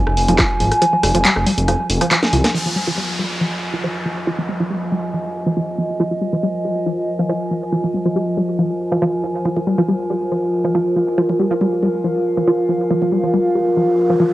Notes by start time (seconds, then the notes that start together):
Already playing: F3 G#5
0.07 F1, cross-stick
0.17 F1, open hi-hat
0.28 F1 F3, closed hi-hat
0.39 F3, kick, cross-stick, clap, closed hi-hat
0.60 G#1 F3, open hi-hat
0.72 cross-stick, closed hi-hat
0.82 F3, closed hi-hat
0.93 F3
1.03 F1 G3, cross-stick, open hi-hat
1.15 F1 F3, closed hi-hat
1.25 G3, clap, closed hi-hat
1.36 F1, cross-stick
1.47 G3, open hi-hat
1.58 F1, closed hi-hat
1.68 F3, cross-stick, closed hi-hat
1.90 F1, open hi-hat
2.01 F3, cross-stick, closed hi-hat
2.11 F3, clap, closed hi-hat
2.23 snare
2.33 C2 F3, open hi-hat
2.44 snare, closed hi-hat
2.54 F3 F4, crash, downlifter
2.66 F3
2.76 G3
2.82 A#4 D#5
2.87 F3
2.98 G3
3.19 G3
3.41 F3
3.74 F3
3.84 F3
4.06 F3
4.27 F3
4.39 F3
4.49 G3
4.60 F3
4.70 G3
4.92 G3
5.14 F3
5.46 F3
5.57 F3
5.78 F3
6.00 F3
6.11 F3
6.22 G3
6.33 F3
6.43 G3
6.65 G3
6.86 F3
7.19 F3
7.29 F3
7.51 F3
7.73 F3
7.84 F3
7.94 G3
8.06 F3
8.16 G3
8.37 G3
8.59 F3
8.92 F3
9.02 F3
9.24 F3
9.45 F3
9.57 F3
9.67 G3
9.78 F3
9.88 G3
10.10 G3
10.32 F3
10.64 F3
10.75 F3
10.96 F3
11.18 F3 F5
11.29 F3
11.39 G3
11.51 F3
11.61 G3
11.83 G3
12.04 F3
12.37 F3
12.47 F3
12.69 F3
12.91 F3, riser
13.02 F3
13.12 G3
13.24 F3
13.34 G3
13.55 G3
13.77 F3
14.10 F3
14.20 F3